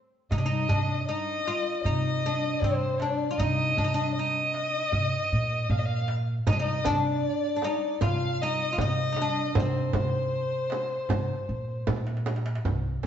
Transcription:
0.31 C3 D#4 D#5, darbuka dum
0.38 D4
0.46 D#4
0.69 C3 D4, darbuka dum
1.07 D#4 D#5
1.46 F4, darbuka tek
1.83 C3 D#4 D#5, darbuka dum
2.26 D4
2.60 C3 C5, darbuka dum
2.64 C4
2.98 D4 D5, darbuka tek
3.19 darbuka ka
3.31 F4
3.37 C3 D#4 D#5, darbuka dum
3.77 C3 D4, darbuka dum
3.84 D#4
3.94 D4
4.15 D#5
4.19 D#4
4.54 darbuka tek
4.92 C3, darbuka dum
5.32 A#2
5.70 A#2 F5, darbuka dum
5.78 D#5
5.85 F5
6.08 darbuka tek
6.28 darbuka ka
6.47 C3 D#4 D#5, darbuka dum, frame drum
6.53 D4
6.59 D#4 D#5
6.85 C3 D4 D5, frame drum, darbuka dum
7.56 D4
7.62 D#4, darbuka tek, frame drum
8.01 C3 F4 F5, frame drum, darbuka dum
8.42 D#4 D#5
8.73 F4
8.78 C3 D#4, frame drum, darbuka dum
8.82 D#5
9.12 D#4, darbuka tek
9.17 frame drum
9.22 D4
9.36 darbuka ka
9.55 C3 C5, darbuka dum, frame drum
9.60 C4
9.93 C3, darbuka dum, frame drum
10.12 darbuka ka
10.32 darbuka ka
10.70 darbuka tek, frame drum
11.09 C3, darbuka dum, frame drum
11.48 A#2, darbuka ka
11.68 darbuka ka
11.87 A#2, darbuka tek, frame drum
11.96 darbuka ka
12.07 darbuka tek
12.17 darbuka ka
12.26 darbuka tek, frame drum
12.36 darbuka ka
12.46 darbuka tek
12.55 darbuka ka
12.65 C2, frame drum, darbuka dum
13.03 frame drum, darbuka dum

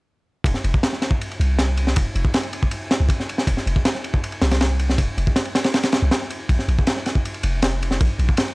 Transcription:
0.44 F1, kick, ride
0.54 snare
0.64 F1, ride
0.74 kick
0.83 snare, ride
0.93 snare
1.02 snare, ride
1.11 kick
1.21 ride
1.31 ride
1.40 C2, ride
1.59 snare, ride
1.77 ride
1.87 snare
1.96 F1, kick, ride
2.15 F1, ride
2.25 kick
2.34 snare, ride
2.43 ride
2.53 ride
2.63 kick
2.71 ride
2.91 snare, ride
3.00 C2
3.09 kick, ride
3.20 snare
3.29 ride
3.38 snare
3.47 F1, kick, ride
3.57 snare
3.66 F1, ride
3.76 kick
3.85 snare, ride
3.95 snare
4.04 ride
4.14 kick
4.24 ride
4.32 ride
4.42 C2, snare, ride
4.51 snare, ride
4.61 snare, ride
4.79 ride
4.90 snare
4.98 F1, kick, ride
5.18 F1, ride
5.27 kick
5.36 snare, ride
5.45 ride
5.55 snare, ride
5.64 snare, ride
5.74 snare, ride
5.83 snare, ride
5.92 snare, ride
6.02 C2
6.11 snare, ride
6.22 snare
6.30 ride
6.49 A#1, kick, ride
6.59 snare
6.68 A#1, ride
6.79 kick
6.87 snare, ride
6.96 snare
7.06 snare, ride
7.15 kick
7.25 ride
7.34 ride
7.43 F1, ride
7.62 snare, ride
7.83 ride
7.91 snare
8.01 A#1, kick, ride
8.19 A#1, ride
8.29 kick
8.37 snare, ride
8.48 ride

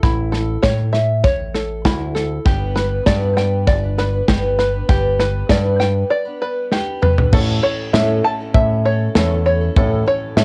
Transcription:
Already playing: A4
0.03 A1 E4, kick, snare
0.32 A4, snare
0.63 A2 C#5, kick, snare
0.93 E5, snare
1.24 A1 C#5, kick, snare
1.55 A4, snare
1.85 D2 E4, kick, snare
2.15 A4, snare
2.45 G1 G3 B3 D4 G4 B4, kick, snare
2.76 G3 B3 D4 B4, snare
3.06 G2 G3 B3 D4 B4 D5, kick, snare
3.37 G3 B3 D4 B4 G5, snare
3.67 G1 D5, kick, snare
3.83 B3 D4 B4
3.98 G3 B3 D4 B4, snare
4.13 B3 D4 B4
4.28 G1 G3 B3 D4 G4 B4, kick, snare
4.59 G3 B3 D4 B4, snare
4.74 B3 D4 B4
4.89 G1 G3 B3 D4 G4 B4, kick, snare
5.19 G3 B3 D4 B4, snare
5.49 G2 G3 B3 D4 B4 D5, kick, snare
5.79 G3 B3 D4 B4 G5, snare
6.10 D5
6.25 B3 D4 B4
6.42 G3 B3 D4 B4
6.71 G3 B3 D4 G4 B4, snare
7.01 G3 B3 D4 B4, mid tom
7.17 B3 D4 B4, floor tom
7.32 A1 A2 A3 C#4 E4 A4 C#5, kick, crash
7.63 A3 C#4 E4 A4 C#5
7.93 A2 A3 C#4 E4 A4 C#5 E5, snare
8.24 A3 C#4 E4 A4 A5
8.40 C#4 E4 A4
8.54 A2 A3 C#4 E4 C#5 E5, kick
8.85 A3 C#4 E4 A4 C#5
9.15 E2 A2 A3 C#4 E4 A4 C#5, snare
9.29 C#4 E4 A4
9.45 A3 C#4 E4 A4 C#5
9.61 C#4 E4 A4
9.76 A1 A2 A3 C#4 E4 A4 C#5, kick
10.06 A3 C#4 E4 A4 C#5
10.37 A2 A3 C#4 E4 A4 C#5 E5, snare

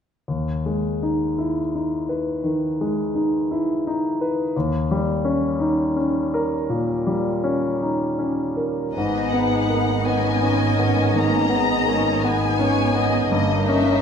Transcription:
0.28 D#2
0.66 G#3
1.03 D#4
1.38 E4
1.75 D#4
2.09 B4
2.44 D#3
2.81 G#3
3.15 D#4
3.51 E4
3.87 D#4
4.21 B4
4.56 D#2
4.91 G3
5.25 C#4
5.60 D#4
5.96 C#4
6.34 A#4
6.69 A#2
7.07 G3
7.44 C#4
7.83 D#4
8.19 C#4
8.57 A#4
8.93 G#1 G#2 B3 D#4 G#4 B4 D#5
8.98 G#2
9.33 B3 F#5
9.69 A#3
10.04 B3 C#4 B4 D#5 G#5
10.42 C#4 B4
10.77 B3 A#4
11.14 D#3 A#3 G#4 D#5 A#5
11.49 G#3 B3
11.86 A#3 C#4
12.23 B3 G#4 B4 G#5
12.60 C#4 C#5
12.95 B3 D#5
13.30 G1 G2 A#3 C#4 D#4 A#4 D#5
13.68 C#4 E5

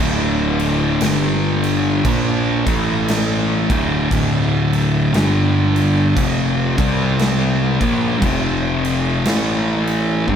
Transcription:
0.00 D1 D2 A2 D3
0.59 crash
1.01 G1 G2 D3 G3, snare, crash
1.64 crash
2.04 A#1 A#2 F3 A#3, kick, crash
2.66 A1 A2 E3 A3, kick, crash
3.08 snare, crash
3.70 D1 D2 A2 D3, kick, crash
4.11 D1 D2 A2 D3, kick, crash
4.73 crash
5.13 G1 G2 D3 G3, snare, crash
5.76 crash
6.16 F1 F2 C3 F3, kick, crash
6.77 C2 C3 G3 C4, kick, crash
7.19 snare, crash
7.81 A#1 A#2 F3 A#3, kick, crash
8.22 F1 F2 C3 F3, kick, crash
8.85 crash
9.25 A1 A2 E3 A3, snare, crash
9.87 crash
10.27 G1 G2 D3 G3, kick

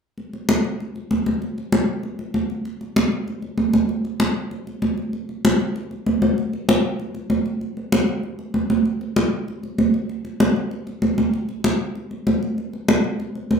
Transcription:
0.18 high conga
0.33 high conga
0.49 high conga
0.64 high conga
0.80 high conga
0.96 high conga
1.11 high conga
1.26 high conga
1.42 high conga
1.58 high conga
1.72 high conga
2.03 high conga
2.19 high conga
2.34 high conga
2.50 high conga
2.65 high conga
2.81 high conga
2.96 high conga
3.12 high conga
3.28 high conga
3.42 high conga
3.58 high conga
3.74 high conga
3.89 high conga
4.05 high conga
4.20 high conga
4.51 high conga
4.67 high conga
4.82 high conga
4.98 high conga
5.13 high conga
5.29 high conga
5.45 high conga
5.60 high conga
5.76 high conga
5.91 high conga
6.06 high conga
6.22 high conga
6.38 high conga
6.53 high conga
6.69 high conga
6.99 high conga
7.15 high conga
7.30 high conga
7.46 high conga
7.61 high conga
7.77 high conga
7.92 high conga
8.08 high conga
8.23 high conga
8.39 high conga
8.54 high conga
8.70 high conga
8.86 high conga
9.01 high conga
9.16 high conga
9.48 high conga
9.63 high conga
9.78 high conga
9.94 high conga
10.09 high conga
10.25 high conga
10.40 high conga
10.56 high conga
10.71 high conga
10.87 high conga
11.02 high conga
11.18 high conga
11.33 high conga
11.49 high conga
11.64 high conga
11.95 high conga
12.11 high conga
12.27 high conga
12.43 high conga
12.58 high conga
12.73 high conga
12.88 high conga
13.04 high conga
13.20 high conga
13.35 high conga
13.51 high conga

